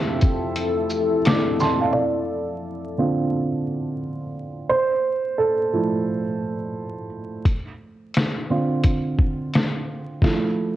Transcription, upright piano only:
0.00 1.18 F3 medium
0.00 1.20 C4 medium
0.00 1.22 G4 medium
0.00 1.23 A4 medium
0.00 1.25 E5 medium
0.00 1.61 A5 medium
0.00 1.60 C6 medium
1.26 1.58 D6 medium
1.60 1.79 A5 medium
1.60 1.79 C6 medium
1.81 2.13 F5 medium
1.81 2.13 A5 medium
1.93 3.96 D5 medium
2.98 3.46 D3 soft
2.98 3.46 C4 soft
2.98 3.47 F4 medium
4.69 5.34 C5 medium
5.38 7.07 A4 medium
5.73 6.21 F3 medium
5.73 6.22 A3 soft
5.73 6.22 E4 medium
8.50 8.98 D3 soft
8.50 8.98 C4 soft
8.50 8.98 F4 medium
10.23 10.76 F3 medium
10.23 10.76 A3 soft
10.23 10.76 E4 medium

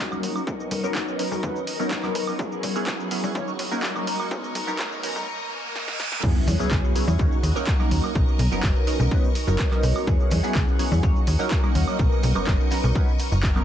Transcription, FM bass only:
0.23 0.33 D#2 medium
0.47 0.57 B1 medium
0.71 0.81 B1 loud
0.95 1.05 F#1 medium
1.31 1.41 B1 loud
1.79 1.88 F#1 medium
2.15 2.25 B1 loud
2.39 2.49 E2 medium
2.63 2.73 E2 loud
2.87 2.97 C#2 medium
3.24 3.33 E2 loud
3.35 3.45 D#2 medium
3.59 3.69 D#2 medium
4.07 4.17 D#2 medium
4.31 4.41 B1 medium
4.55 4.65 B1 loud
5.16 5.25 B1 loud
6.23 6.33 E2 loud
6.47 6.57 E2 loud
6.71 6.81 C#2 medium
7.08 7.17 E2 loud
7.19 7.29 D#2 medium
7.43 7.53 D#2 medium
7.91 8.01 D#2 medium
8.15 8.25 B1 loud
8.39 8.49 B1 loud
8.63 8.73 F#1 medium
9.00 9.09 B1 loud
9.48 9.57 F#1 medium
9.83 9.93 B1 loud
10.07 10.17 E2 loud
10.31 10.41 E2 loud
10.55 10.65 C#2 medium
10.92 11.01 E2 loud
11.03 11.13 D#2 medium
11.27 11.37 D#2 medium
11.75 11.85 D#2 medium
11.99 12.09 B1 loud
12.23 12.33 B1 loud
12.36 12.45 F#1 soft
12.47 12.57 F#1 medium
12.84 12.93 B1 loud
13.32 13.64 F#1 medium

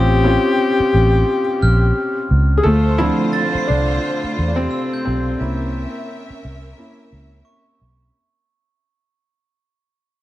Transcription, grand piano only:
0.00 0.20 C4 medium
0.00 0.20 C#4 medium
0.00 0.21 F4 medium
0.00 0.21 G4 medium
0.24 1.40 C4 medium
0.24 1.40 C#4 medium
0.24 1.41 F4 medium
0.24 1.41 G4 medium
2.58 2.64 G#4 medium
2.63 2.98 A3 medium
2.63 3.00 A4 loud
2.98 3.65 D3 medium
2.98 3.47 F3 medium
2.98 3.48 C4 medium
2.98 3.00 E4 loud
2.98 3.48 E4 medium
3.67 4.46 D3 medium
3.67 4.47 D4 medium
4.48 4.57 D4 medium
4.56 5.03 C3 medium
4.56 5.02 C4 loud
5.05 7.43 C3 medium
5.05 7.42 C4 medium
5.41 6.40 A#3 medium
5.41 6.40 C#4 medium
5.41 6.40 E4 medium
6.78 7.09 A#3 medium
6.78 7.09 C#4 soft
6.78 7.09 E4 medium

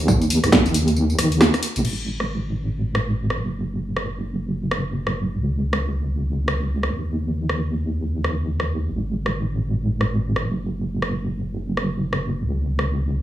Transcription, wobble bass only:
0.00 0.39 D#2 medium
0.43 0.50 D#2 loud
0.66 1.15 D#2 medium
1.18 1.49 D#2 medium
1.76 1.83 A#1 medium
1.85 3.37 G#1 medium
3.39 5.36 F#1 medium
5.38 6.90 C#2 medium
6.92 8.89 D#2 medium
8.90 10.43 G#1 medium
10.45 12.42 F#1 medium
12.44 13.22 C#2 medium

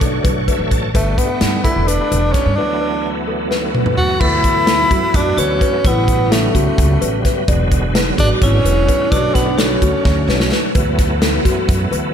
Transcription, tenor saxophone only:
0.00 0.24 D4 medium
0.96 1.19 A3 medium
1.18 1.63 B3 medium
1.64 1.89 E4 medium
1.87 2.34 D4 medium
2.32 2.57 C#4 medium
2.56 3.09 D4 medium
3.97 4.22 F#4 medium
4.20 5.17 E4 loud
5.15 5.41 D4 medium
5.39 5.88 C#4 medium
5.87 6.34 B3 loud
6.32 7.25 A3 medium
8.19 8.30 D4 loud
8.43 9.13 C#4 loud
9.11 9.36 D4 loud
9.34 9.59 B3 medium
9.58 10.51 C#4 medium

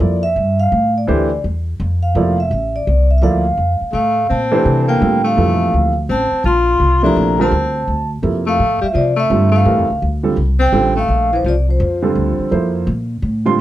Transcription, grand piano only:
0.00 0.21 F3 soft
0.00 0.20 A#3 soft
0.00 0.20 E4 soft
0.00 0.21 A4 soft
0.00 0.21 D5 medium
1.07 1.28 E3 medium
1.07 1.29 A3 medium
1.07 1.28 D4 medium
1.07 1.29 G4 medium
1.07 1.29 C5 medium
2.15 2.36 F3 medium
2.15 2.36 A#3 medium
2.15 2.36 E4 medium
2.15 2.36 A4 medium
2.15 2.36 D5 medium
3.22 3.43 F3 medium
3.22 3.43 A#3 medium
3.22 3.43 E4 medium
3.22 3.43 A4 medium
3.22 3.43 D5 medium
4.51 4.98 E3 medium
4.51 4.98 A3 medium
4.51 4.99 D4 medium
4.51 4.99 G4 medium
4.51 4.99 C5 medium
5.00 5.55 D3 medium
5.00 5.55 G3 soft
5.00 5.55 C4 soft
5.00 5.55 F4 soft
5.00 5.36 A4 medium
5.36 5.91 A#2 soft
5.36 5.91 C3 medium
5.36 5.91 E3 medium
5.36 5.91 F3 soft
5.36 5.92 A4 medium
7.03 7.36 C3 medium
7.03 7.36 F3 medium
7.03 7.37 A3 medium
7.03 7.36 A#3 medium
7.03 7.36 E4 medium
7.38 7.50 D3 medium
7.38 7.51 G3 medium
7.38 7.51 C4 medium
7.38 7.51 F4 medium
7.38 7.51 A#4 medium
8.22 8.58 C3 soft
8.22 8.59 F3 soft
8.22 8.59 A#3 soft
8.22 8.59 E4 soft
8.22 8.59 A4 medium
9.30 9.84 D3 medium
9.30 9.84 G3 soft
9.30 9.84 C4 soft
9.30 9.84 F4 soft
9.30 9.84 A4 medium
9.65 9.86 E3 medium
9.65 9.86 A3 soft
9.65 9.86 D4 soft
9.65 9.86 G4 soft
9.65 9.86 A#4 medium
10.23 10.35 D3 medium
10.23 10.36 G3 medium
10.23 10.36 C4 medium
10.23 10.36 F4 medium
10.23 10.36 A4 medium
10.72 10.93 D3 medium
10.72 10.93 G3 medium
10.72 10.93 C4 medium
10.72 10.93 F4 medium
10.72 10.94 A4 medium
12.02 12.48 D3 medium
12.02 12.49 G3 medium
12.02 12.49 C4 medium
12.02 12.49 F4 medium
12.02 12.49 A4 medium
12.51 12.87 F3 medium
12.51 12.87 A#3 medium
12.51 12.87 E4 medium
12.51 12.87 A4 soft
12.51 12.87 C5 medium
13.45 13.61 D3 medium
13.45 13.61 G3 medium
13.45 13.61 C4 medium
13.45 13.61 F4 medium
13.45 13.58 C6 medium

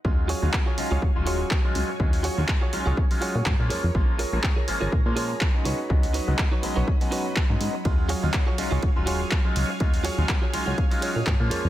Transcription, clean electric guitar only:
0.28 0.47 F4 loud
0.28 0.48 F#4 loud
0.28 0.48 G#4 loud
0.28 0.48 C#5 loud
0.66 0.77 F4 medium
0.66 0.78 F#4 medium
0.66 0.78 G#4 medium
0.66 0.78 C#5 loud
0.90 1.08 F4 medium
0.90 1.09 F#4 medium
0.90 1.09 G#4 medium
0.90 1.09 C#5 loud
1.26 1.57 F4 loud
1.26 1.57 F#4 loud
1.26 1.58 G#4 loud
1.26 1.58 C#5 loud
1.88 muted clean electric guitar stroke soft
2.23 2.43 F4 loud
2.23 2.43 F#4 loud
2.23 2.43 G#4 loud
2.23 2.43 C#5 loud
2.61 2.73 F4 medium
2.61 2.73 F#4 medium
2.61 2.73 G#4 medium
2.61 2.73 C#5 loud
2.86 3.04 F4 loud
2.86 3.04 F#4 medium
2.86 3.04 G#4 medium
2.86 3.04 C#5 loud
3.21 3.52 F4 loud
3.21 3.53 F#4 loud
3.21 3.53 G#4 loud
3.21 3.53 C#5 loud
3.69 4.10 F4 loud
3.69 4.10 G#4 medium
3.69 4.11 A#4 medium
3.69 4.11 C#5 loud
4.18 4.38 F4 loud
4.18 4.38 G#4 loud
4.18 4.38 A#4 loud
4.18 4.39 C#5 loud
4.56 4.68 F4 medium
4.56 4.68 G#4 medium
4.56 4.68 A#4 medium
4.56 4.68 C#5 loud
4.81 4.99 F4 loud
4.81 4.99 G#4 medium
4.81 4.99 A#4 medium
4.81 4.99 C#5 loud
5.16 5.47 F4 loud
5.16 5.48 G#4 loud
5.16 5.48 A#4 loud
5.16 5.48 C#5 loud
5.65 6.05 D#4 loud
5.65 6.05 F#4 medium
5.65 6.06 B4 medium
5.65 6.06 C#5 loud
6.13 6.33 D#4 loud
6.13 6.33 F#4 loud
6.13 6.33 B4 loud
6.13 6.34 C#5 loud
6.51 6.63 D#4 medium
6.51 6.63 F#4 medium
6.51 6.63 B4 medium
6.51 6.63 C#5 loud
6.75 6.94 D#4 medium
6.75 6.94 F#4 medium
6.75 6.94 B4 medium
6.75 6.95 C#5 loud
7.11 7.43 D#4 loud
7.11 7.43 F#4 loud
7.11 7.43 B4 loud
7.11 7.43 C#5 loud
7.73 muted clean electric guitar stroke soft
8.09 8.28 F4 loud
8.09 8.28 F#4 loud
8.09 8.29 G#4 loud
8.09 8.29 C#5 loud
8.46 8.58 F4 medium
8.46 8.58 F#4 medium
8.46 8.58 G#4 medium
8.46 8.59 C#5 loud
8.71 8.89 F4 medium
8.71 8.89 F#4 medium
8.71 8.89 G#4 medium
8.71 8.90 C#5 loud
9.06 9.38 F4 loud
9.06 9.38 F#4 loud
9.06 9.38 G#4 loud
9.06 9.38 C#5 loud
9.69 muted clean electric guitar stroke soft
10.04 10.23 F4 loud
10.04 10.23 F#4 loud
10.04 10.24 G#4 loud
10.04 10.24 C#5 loud
10.42 10.53 F4 medium
10.42 10.53 F#4 medium
10.42 10.54 G#4 medium
10.42 10.54 C#5 loud
10.53 10.66 G#5 medium
10.66 10.84 F4 medium
10.66 10.84 F#4 medium
10.66 10.85 G#4 medium
10.66 10.85 C#5 loud
10.66 10.77 F#5 medium
10.78 11.13 F5 medium
11.01 11.33 F4 loud
11.01 11.33 F#4 loud
11.01 11.33 G#4 loud
11.01 11.25 C#5 loud
11.16 11.26 D#5 medium
11.50 11.69 F4 medium
11.50 11.69 G#4 medium
11.50 11.69 A#4 medium
11.50 11.69 C#5 loud

